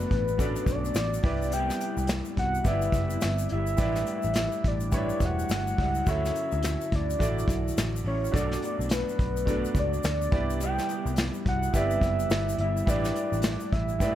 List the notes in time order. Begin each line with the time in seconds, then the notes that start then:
Already playing: B2 F#3 A3 D4 F#4 A4 B4 D5
0.11 A1, kick, closed hi-hat
0.28 shaker
0.37 B2 F#3 A3 C#4 D4 F#4 A4 D5, kick, closed hi-hat, shaker
0.44 D4
0.56 shaker
0.66 B1 D5, kick, closed hi-hat, shaker
0.85 shaker
0.95 A1, snare, closed hi-hat, shaker
1.14 shaker
1.22 C2 G3 B3 E4 G4 B4 D5, kick, open hi-hat
1.42 shaker
1.50 C3 G3 B3 G5, closed hi-hat, shaker
1.56 E4
1.70 snare, shaker
1.81 closed hi-hat, shaker
1.97 C2, shaker
2.07 snare, closed hi-hat, shaker
2.25 shaker
2.37 C2 F#5, kick, closed hi-hat
2.55 shaker
2.63 G1 C3 G3 B3 E4 G4 B4 D5, kick, closed hi-hat, shaker
2.68 E4 E5
2.82 shaker
2.92 F#1, kick, closed hi-hat, shaker
3.10 shaker
3.21 G1, snare, closed hi-hat, shaker
3.38 shaker
3.49 G1 B3 E4 E5, closed hi-hat
3.53 G3
3.67 shaker
3.76 A1 A2 G3 E4 G4 B4 D5, kick, closed hi-hat, shaker
3.81 D4 E4 E5
3.95 snare, shaker
4.06 closed hi-hat, shaker
4.23 A1, shaker
4.33 snare, closed hi-hat, shaker
4.52 shaker
4.64 A1 D5, kick, closed hi-hat
4.80 shaker
4.91 A2 G3 D4 E4 G4 B4 C#5, kick, closed hi-hat, shaker
4.97 D5
5.09 shaker
5.20 E1, kick, closed hi-hat, shaker
5.25 F#5
5.39 shaker
5.49 G1, snare, closed hi-hat, shaker
5.67 shaker
5.77 C#2 G3 D4 E4, kick, open hi-hat
5.95 shaker
6.04 D2 D3 F#3 C#4 E4 F#4 A4, kick, closed hi-hat, shaker
6.09 E4 C#5 E5
6.25 snare, shaker
6.35 closed hi-hat, shaker
6.52 D2, shaker
6.62 snare, closed hi-hat, shaker
6.81 shaker
6.92 D2 D5, kick, closed hi-hat
7.10 shaker
7.19 A1 D3 F#3 E4 F#4 A4 D5, kick, closed hi-hat, shaker
7.39 shaker
7.48 B1, kick, closed hi-hat, shaker
7.68 shaker
7.77 A1, snare, closed hi-hat, shaker
7.96 shaker
8.04 A1 F#3 C#4 E4 C#5, open hi-hat
8.25 shaker
8.31 B1 B2 F#3 A3 D4 F#4 A4 D5, kick, closed hi-hat
8.36 D4 D5, shaker
8.52 snare, shaker
8.62 closed hi-hat, shaker
8.79 B1, shaker
8.89 B4, snare, closed hi-hat, shaker
9.09 shaker
9.19 B1, kick, closed hi-hat
9.37 shaker
9.45 B2 F#3 A3 D4 F#4 A4 D5, kick, closed hi-hat, shaker
9.65 shaker
9.75 C#2, kick, closed hi-hat, shaker
9.79 D5
9.93 shaker
10.03 D2, snare, closed hi-hat, shaker
10.22 shaker
10.31 C2 G3 B3 E4 G4 B4 D5, kick, closed hi-hat
10.50 shaker
10.58 C3 G3, closed hi-hat, shaker
10.63 B3 E4 G5
10.78 snare, shaker
10.89 closed hi-hat, shaker
11.06 C2, shaker
11.16 snare, closed hi-hat, shaker
11.34 shaker
11.46 C2 F#5, kick, closed hi-hat
11.63 shaker
11.72 G1 C3 G3 B3 E4 G4 B4 D5, kick, closed hi-hat, shaker
11.77 E5
11.91 shaker
12.01 F#1, kick, closed hi-hat, shaker
12.20 shaker
12.30 G1, snare, closed hi-hat, shaker
12.49 shaker
12.57 G1 G3 B3 E4 E5, closed hi-hat
12.77 shaker
12.84 A1 A2 G3 D4 E4 G4 B4, kick, closed hi-hat
12.89 E4 D5, shaker
13.05 snare, shaker
13.15 closed hi-hat, shaker
13.32 A1, shaker
13.42 snare, closed hi-hat, shaker
13.60 shaker
13.72 A1 E5, kick, closed hi-hat
13.89 shaker
13.99 A2 G3 D4 E4 G4 B4 D5 E5, kick, closed hi-hat, shaker
14.03 E4